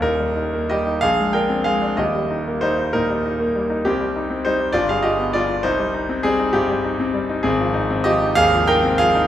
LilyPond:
<<
  \new Staff \with { instrumentName = "Grand piano" } { \time 6/8 \key ees \major \tempo 4. = 65 <ees' bes'>4 <g' ees''>8 <aes' f''>8 <bes' g''>8 <aes' f''>8 | <g' ees''>4 <ees' c''>8 <ees' bes'>4. | <c' g'>4 <ees' c''>8 <f' d''>16 <aes' f''>16 <g' ees''>8 <f' d''>8 | <ees' c''>4 <c' aes'>8 <c' g'>4. |
<c' aes'>4 <g' ees''>8 <aes' f''>8 <bes' g''>8 <aes' f''>8 | }
  \new Staff \with { instrumentName = "Grand piano" } { \clef bass \time 6/8 \key ees \major <ees,, ees,>16 g16 ees'16 bes16 g16 ees'16 bes,,16 aes16 d'16 c'16 aes16 d'16 | <ees,, ees,>16 g16 ees'16 bes16 g16 ees'16 bes,16 g16 ees'16 bes16 g16 ees'16 | c,16 g16 ees'16 c'16 g16 ees'16 g,,16 g16 f'16 b16 g16 f'16 | c,16 g16 ees'16 c'16 g16 ees'16 g,16 g16 ees'16 c'16 g16 ees'16 |
aes,,16 f16 ees'16 c'16 f16 ees'16 ees,16 f16 ees'16 c'16 f16 ees'16 | }
>>